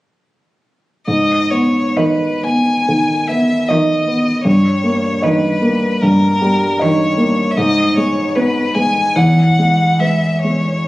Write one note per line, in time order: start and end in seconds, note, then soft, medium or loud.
1.07 2.83 G#2 soft
1.07 1.52 D#5 medium
1.51 2.26 B3 soft
1.51 1.98 C#5 soft
1.96 2.67 D#3 soft
1.96 2.45 B4 soft
1.96 2.71 D#5 soft
2.43 3.12 B3 soft
2.43 3.29 G#5 medium
2.88 3.53 D#3 soft
3.28 3.92 B3 soft
3.28 3.69 E5 medium
3.68 4.27 D#3 soft
3.68 4.43 D#5 soft
3.68 4.30 D#5 soft
4.07 4.45 B3 soft
4.44 5.98 G2 soft
4.44 5.25 C#5 medium
4.84 5.47 A#3 soft
5.22 5.83 D#3 soft
5.22 6.04 B4 medium
5.22 5.86 D#5 soft
5.62 6.26 A#3 soft
6.02 7.53 G2 soft
6.02 6.83 A#4 medium
6.41 7.04 G3 soft
6.79 7.39 D#3 medium
6.79 7.52 C#5 medium
6.79 7.41 D#5 soft
7.17 7.56 A#3 soft
7.51 7.58 E5 medium
7.57 9.12 G#2 medium
7.57 7.96 D#5 medium
7.96 8.60 G#3 soft
7.96 8.37 C#5 medium
8.35 8.97 B3 soft
8.35 8.76 B4 medium
8.35 9.00 B4 soft
8.74 9.16 G#3 soft
8.74 9.17 G#5 medium
9.15 10.83 E2 soft
9.15 10.01 F#5 medium
9.59 10.26 G#3 soft
9.99 10.65 G#3 soft
9.99 10.70 B4 soft
9.99 10.41 E5 medium
10.41 10.88 G#3 soft
10.41 10.88 C#5 soft